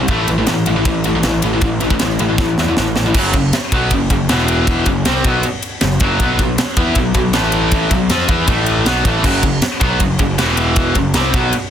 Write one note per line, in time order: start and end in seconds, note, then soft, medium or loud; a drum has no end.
0.00 0.09 C3 medium
0.00 0.10 G3 medium
0.08 0.25 A1 medium
0.08 0.27 A2 medium
0.08 0.28 E3 medium
0.08 0.28 A3 loud
0.08 kick loud
0.08 ride medium
0.28 0.45 A1 medium
0.28 0.37 A2 medium
0.28 0.37 E3 medium
0.28 ride medium
0.38 0.47 A2 medium
0.38 0.48 E3 medium
0.47 0.64 A1 medium
0.47 0.65 A2 medium
0.47 0.66 E3 medium
0.47 snare loud
0.47 ride loud
0.66 0.83 A1 medium
0.66 0.76 A2 medium
0.66 0.75 E3 medium
0.66 ride medium
0.76 0.85 A2 medium
0.76 0.85 E3 medium
0.85 1.19 A1 loud
0.85 1.03 A2 medium
0.85 1.03 E3 medium
0.85 kick loud
0.85 ride loud
1.04 1.15 A2 medium
1.04 1.14 E3 medium
1.04 ride medium
1.15 1.23 A2 medium
1.15 1.24 E3 medium
1.23 1.40 A1 loud
1.23 1.41 A2 medium
1.23 1.42 E3 loud
1.23 snare loud
1.23 ride loud
1.42 1.60 A1 medium
1.42 1.53 A2 medium
1.42 1.52 E3 medium
1.42 ride medium
1.53 1.61 A2 medium
1.53 1.61 E3 medium
1.61 1.78 A1 loud
1.61 1.79 A2 medium
1.61 1.80 E3 medium
1.61 kick loud
1.61 ride loud
1.80 1.98 A1 loud
1.80 1.90 A2 medium
1.80 1.90 E3 medium
1.80 ride medium
1.90 1.99 A2 medium
1.90 2.00 E3 medium
1.90 kick medium
1.99 2.17 A1 medium
1.99 2.17 A2 medium
1.99 2.18 E3 medium
1.99 snare loud
1.99 ride loud
2.19 2.36 A1 medium
2.19 2.28 A2 medium
2.19 2.27 E3 medium
2.19 ride medium
2.29 2.37 A2 medium
2.29 2.38 E3 medium
2.38 2.55 A1 medium
2.38 2.56 A2 medium
2.38 2.56 E3 loud
2.38 kick loud
2.38 snare medium
2.58 2.75 E2 medium
2.58 2.67 A2 medium
2.58 2.67 E3 medium
2.58 snare medium
2.68 2.77 A2 medium
2.68 2.77 E3 loud
2.77 3.10 A1 loud
2.77 2.94 A2 medium
2.77 2.95 E3 medium
2.77 snare medium
2.96 3.06 A2 medium
2.96 3.05 E3 medium
2.96 snare medium
3.06 3.15 A2 medium
3.06 3.15 E3 medium
3.14 3.33 F#1 medium
3.14 3.33 F#2 loud
3.14 3.33 C#3 loud
3.14 3.34 F#3 loud
3.14 kick loud
3.14 crash loud
3.33 3.52 F#1 medium
3.33 3.49 F#2 medium
3.33 3.50 C#3 medium
3.33 kick medium
3.33 ride medium
3.53 muted picked electric bass stroke soft
3.53 muted distorted electric guitar stroke medium
3.53 snare loud
3.53 ride loud
3.72 3.90 B1 medium
3.72 3.91 B2 medium
3.72 3.91 F#3 medium
3.72 3.91 B3 loud
3.72 kick loud
3.72 ride medium
3.91 4.09 F#1 medium
3.91 4.07 F#2 medium
3.91 4.07 C#3 medium
3.91 kick loud
3.91 ride loud
4.10 4.28 F#1 medium
4.10 4.26 F#2 medium
4.10 4.26 C#3 medium
4.10 kick medium
4.10 ride medium
4.29 4.83 E1 loud
4.29 4.86 E2 loud
4.29 4.86 B2 loud
4.29 4.86 E3 loud
4.29 snare loud
4.29 ride loud
4.48 ride medium
4.67 kick loud
4.67 ride loud
4.86 5.04 F#1 medium
4.86 5.02 F#2 medium
4.86 5.02 C#3 medium
4.86 kick medium
4.86 ride medium
5.05 5.24 C2 medium
5.05 5.24 C3 loud
5.05 5.24 G3 medium
5.05 5.24 C4 loud
5.05 snare loud
5.05 ride loud
5.24 5.42 B1 medium
5.24 5.43 B2 medium
5.24 5.44 F#3 medium
5.24 5.44 B3 loud
5.24 kick loud
5.24 ride medium
5.43 ride loud
5.62 ride medium
5.81 6.00 F#1 medium
5.81 5.97 F#2 medium
5.81 5.97 C#3 medium
5.81 snare loud
5.81 ride loud
6.00 6.18 F#1 loud
6.00 6.20 F#2 loud
6.00 6.20 C#3 loud
6.00 6.19 F#3 loud
6.00 kick loud
6.00 ride medium
6.20 6.37 B1 loud
6.20 6.38 B2 loud
6.20 6.38 F#3 loud
6.20 6.39 B3 loud
6.20 kick loud
6.20 ride medium
6.39 6.57 B1 medium
6.39 6.55 B2 medium
6.39 6.55 F#3 medium
6.39 kick medium
6.39 ride medium
6.58 muted distorted electric guitar stroke medium
6.58 muted picked electric bass stroke soft
6.58 snare loud
6.58 ride loud
6.77 6.95 E2 medium
6.77 6.95 E3 loud
6.77 6.96 B3 loud
6.77 6.96 E4 loud
6.77 kick loud
6.77 ride medium
6.95 7.14 B1 medium
6.95 7.11 B2 medium
6.95 7.11 F#3 medium
6.95 kick loud
6.95 ride loud
7.14 7.33 B1 medium
7.14 7.30 B2 medium
7.14 7.31 F#3 medium
7.14 kick medium
7.14 ride medium
7.33 7.87 A1 loud
7.33 7.91 A2 medium
7.33 7.91 E3 loud
7.33 7.91 A3 loud
7.33 snare loud
7.33 ride loud
7.52 ride medium
7.71 kick loud
7.71 ride loud
7.91 8.09 B1 medium
7.91 8.07 B2 medium
7.91 8.07 F#3 medium
7.91 kick medium
7.91 ride medium
8.10 8.28 F2 loud
8.10 8.28 F3 medium
8.10 8.28 C4 loud
8.10 8.29 F4 loud
8.10 snare loud
8.10 ride loud
8.28 8.47 E2 medium
8.28 8.46 E3 loud
8.28 8.47 B3 medium
8.28 8.47 E4 medium
8.28 kick loud
8.28 ride medium
8.47 8.83 A1 medium
8.47 8.85 A2 loud
8.47 8.85 E3 loud
8.47 8.85 A3 loud
8.47 kick loud
8.47 ride loud
8.66 ride medium
8.86 9.04 B1 loud
8.86 9.04 B2 loud
8.86 9.05 F#3 loud
8.86 9.05 B3 loud
8.86 snare loud
8.86 ride loud
9.05 9.23 A1 medium
9.05 9.23 A2 loud
9.05 9.24 E3 loud
9.05 9.24 A3 loud
9.05 kick loud
9.05 ride medium
9.23 9.42 F#1 loud
9.23 9.42 F#2 loud
9.23 9.43 C#3 loud
9.23 9.43 F#3 loud
9.23 kick loud
9.23 crash loud
9.43 9.61 F#1 medium
9.43 9.59 F#2 medium
9.43 9.59 C#3 medium
9.43 kick medium
9.43 ride medium
9.62 muted distorted electric guitar stroke medium
9.62 muted picked electric bass stroke soft
9.62 snare loud
9.62 ride loud
9.80 9.99 B1 medium
9.80 9.99 B2 medium
9.80 10.00 F#3 loud
9.80 10.00 B3 loud
9.80 kick loud
9.80 ride medium
9.99 10.18 F#1 medium
9.99 10.15 F#2 medium
9.99 10.15 C#3 medium
9.99 kick medium
9.99 ride loud
10.19 10.37 F#1 medium
10.19 10.35 F#2 medium
10.19 10.35 C#3 medium
10.19 kick medium
10.19 ride medium
10.38 10.92 E1 medium
10.38 10.95 E2 medium
10.38 10.95 B2 loud
10.38 10.95 E3 loud
10.38 snare loud
10.38 ride loud
10.57 ride medium
10.76 kick loud
10.76 ride loud
10.95 11.13 F#1 medium
10.95 11.11 F#2 medium
10.95 11.12 C#3 medium
10.95 kick medium
10.95 ride medium
11.14 11.33 C2 medium
11.14 11.34 C3 medium
11.14 11.34 G3 loud
11.14 11.34 C4 loud
11.14 snare loud
11.14 ride loud
11.34 11.52 B1 medium
11.34 11.53 B2 medium
11.34 11.52 F#3 loud
11.34 11.53 B3 loud
11.34 kick loud
11.34 ride medium
11.53 ride loud